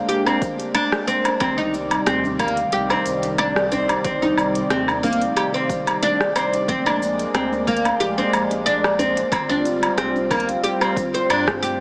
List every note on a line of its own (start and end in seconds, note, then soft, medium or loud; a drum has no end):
0.00 1.37 G#3 medium
0.00 1.37 A#3 medium
0.00 1.37 D4 medium
0.09 0.26 G4 medium
0.09 closed hi-hat medium
0.09 shaker soft
0.26 0.41 C4 medium
0.26 low woodblock medium
0.26 shaker soft
0.41 kick loud
0.41 closed hi-hat soft
0.41 djembe slap soft
0.41 shaker medium
0.60 closed hi-hat soft
0.60 shaker soft
0.75 0.92 D4 loud
0.75 closed hi-hat medium
0.75 low woodblock medium
0.75 shaker soft
0.92 cross-stick medium
0.92 shaker soft
1.07 1.24 C4 medium
1.07 closed hi-hat soft
1.07 shaker medium
1.25 closed hi-hat soft
1.25 djembe slap medium
1.25 low woodblock medium
1.25 shaker soft
1.40 1.98 C2 loud
1.40 6.64 C3 medium
1.40 6.64 D#3 medium
1.40 6.64 G3 medium
1.40 1.57 C4 medium
1.40 9.28 D5 medium
1.40 kick loud
1.40 closed hi-hat medium
1.40 low woodblock medium
1.40 shaker soft
1.58 1.73 D#4 medium
1.58 shaker soft
1.74 shaker medium
1.91 closed hi-hat soft
1.91 low woodblock medium
1.91 shaker soft
2.06 2.64 D#2 loud
2.06 2.23 C4 medium
2.06 cross-stick medium
2.06 closed hi-hat medium
2.06 shaker soft
2.24 djembe slap soft
2.24 djembe tone medium
2.24 shaker soft
2.39 2.56 A#3 medium
2.39 kick loud
2.39 closed hi-hat soft
2.39 low woodblock medium
2.39 shaker medium
2.48 closed hi-hat soft
2.57 closed hi-hat soft
2.57 djembe tone soft
2.57 shaker soft
2.72 2.95 C2 loud
2.72 2.89 G4 medium
2.72 closed hi-hat medium
2.72 shaker soft
2.90 3.05 C4 medium
2.90 djembe slap medium
2.90 djembe tone medium
2.90 low woodblock medium
2.90 shaker soft
3.06 3.96 C2 medium
3.06 closed hi-hat soft
3.06 shaker medium
3.23 closed hi-hat soft
3.23 djembe slap medium
3.23 shaker soft
3.38 3.55 D4 loud
3.38 closed hi-hat medium
3.38 low woodblock medium
3.38 shaker soft
3.56 cross-stick medium
3.56 shaker soft
3.72 3.89 C4 medium
3.72 closed hi-hat soft
3.72 djembe bass medium
3.72 shaker medium
3.89 closed hi-hat soft
3.89 djembe slap medium
3.89 low woodblock medium
3.89 shaker soft
4.04 4.62 C2 medium
4.04 4.21 C4 medium
4.04 kick loud
4.04 closed hi-hat medium
4.04 shaker soft
4.22 4.37 D#4 medium
4.22 djembe bass medium
4.22 shaker soft
4.38 low woodblock medium
4.38 shaker medium
4.55 closed hi-hat soft
4.55 shaker soft
4.70 5.28 D#2 medium
4.70 4.87 C4 medium
4.70 cross-stick medium
4.70 closed hi-hat medium
4.70 shaker soft
4.88 djembe slap medium
4.88 djembe tone medium
4.88 low woodblock medium
4.88 shaker soft
5.03 5.20 A#3 medium
5.03 kick loud
5.03 closed hi-hat soft
5.03 djembe bass medium
5.03 shaker medium
5.13 closed hi-hat medium
5.22 closed hi-hat soft
5.22 djembe tone soft
5.22 shaker soft
5.37 5.53 G4 medium
5.37 closed hi-hat medium
5.37 low woodblock medium
5.37 shaker soft
5.54 5.69 C4 medium
5.54 shaker soft
5.69 kick loud
5.69 closed hi-hat soft
5.69 djembe slap soft
5.69 shaker medium
5.87 closed hi-hat soft
5.87 low woodblock medium
5.87 shaker soft
6.03 6.19 D4 loud
6.03 closed hi-hat medium
6.03 shaker soft
6.21 cross-stick medium
6.21 shaker soft
6.36 6.52 C4 medium
6.36 closed hi-hat soft
6.36 low woodblock medium
6.36 shaker medium
6.54 closed hi-hat soft
6.54 djembe slap medium
6.54 shaker soft
6.68 7.26 A#1 medium
6.68 9.29 G#3 medium
6.68 9.29 A#3 medium
6.68 6.85 C4 medium
6.68 kick loud
6.68 closed hi-hat medium
6.68 shaker soft
6.86 7.01 D4 medium
6.86 low woodblock medium
6.86 shaker soft
7.02 shaker medium
7.19 closed hi-hat soft
7.19 shaker soft
7.34 7.92 D2 loud
7.34 7.51 C4 medium
7.34 cross-stick medium
7.34 closed hi-hat medium
7.34 low woodblock medium
7.34 shaker soft
7.52 djembe slap medium
7.52 djembe tone medium
7.52 shaker soft
7.67 7.84 A#3 medium
7.67 kick loud
7.67 closed hi-hat soft
7.67 shaker medium
7.77 closed hi-hat medium
7.85 closed hi-hat soft
7.85 djembe tone soft
7.85 low woodblock medium
7.85 shaker soft
8.00 8.23 A#1 loud
8.00 8.17 G4 medium
8.00 closed hi-hat medium
8.00 shaker soft
8.18 8.32 C4 medium
8.18 djembe slap medium
8.18 djembe tone medium
8.18 shaker soft
8.33 9.24 A#1 medium
8.33 closed hi-hat soft
8.33 low woodblock medium
8.33 shaker medium
8.51 closed hi-hat soft
8.51 djembe slap medium
8.51 shaker soft
8.66 8.83 D4 loud
8.66 closed hi-hat medium
8.66 shaker soft
8.84 cross-stick medium
8.84 low woodblock medium
8.84 shaker soft
8.99 9.16 C4 medium
8.99 closed hi-hat soft
8.99 djembe bass medium
8.99 shaker medium
9.17 closed hi-hat soft
9.17 djembe slap medium
9.17 shaker soft
9.32 9.90 G1 loud
9.32 11.80 G3 medium
9.32 9.49 C4 medium
9.32 11.80 C4 medium
9.32 11.80 F4 medium
9.32 kick loud
9.32 closed hi-hat medium
9.32 low woodblock medium
9.32 shaker soft
9.49 9.64 D4 medium
9.49 djembe tone medium
9.49 djembe bass medium
9.49 shaker soft
9.65 closed hi-hat soft
9.65 shaker medium
9.83 closed hi-hat soft
9.83 low woodblock medium
9.83 shaker soft
9.98 10.55 C2 loud
9.98 10.15 C4 medium
9.98 cross-stick medium
9.98 closed hi-hat medium
9.98 shaker soft
10.15 djembe slap medium
10.15 djembe tone medium
10.15 shaker soft
10.31 10.48 A#3 medium
10.31 kick loud
10.31 closed hi-hat soft
10.31 djembe bass medium
10.31 low woodblock medium
10.31 shaker medium
10.40 closed hi-hat medium
10.49 closed hi-hat soft
10.49 djembe slap soft
10.49 djembe tone soft
10.49 shaker soft
10.64 10.81 G4 medium
10.64 closed hi-hat medium
10.64 shaker soft
10.81 10.96 C4 medium
10.81 low woodblock medium
10.81 shaker soft
10.97 kick loud
10.97 closed hi-hat soft
10.97 djembe slap soft
10.97 shaker medium
11.14 11.28 C5 medium
11.14 closed hi-hat soft
11.14 shaker soft
11.29 11.80 G2 medium
11.29 11.47 D4 medium
11.29 closed hi-hat medium
11.29 low woodblock medium
11.29 shaker soft
11.47 kick medium
11.47 cross-stick medium
11.47 shaker soft
11.63 11.79 G4 loud
11.63 closed hi-hat soft
11.63 shaker medium